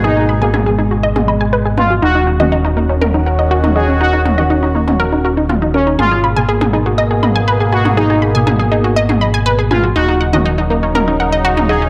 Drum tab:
T2 |----o----o----o-|---o----o----o--|--o----o----o---|o----o----o----o|

T2 |----o----o----o-|---o----o----o--|